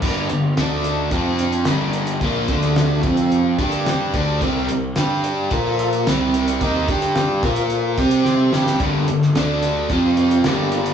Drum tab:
CC |x---------------|----------------|----------------|----------------|
HH |--x-x-x-x-xxx-xx|x-xxx-xxx-xxx-x-|x-x-x-x-x-xxx-xx|x-xxx-xxx-xx----|
SD |----o-------o---|----o-------o---|----o-------o---|----o-------o-oo|
BD |o-------o-------|o-o---o---o---o-|o-------o-------|o-o---o---o-----|

CC |----------------|
HH |x-x-x-x-x-xxx-xx|
SD |---oo-------o---|
BD |o-------o-------|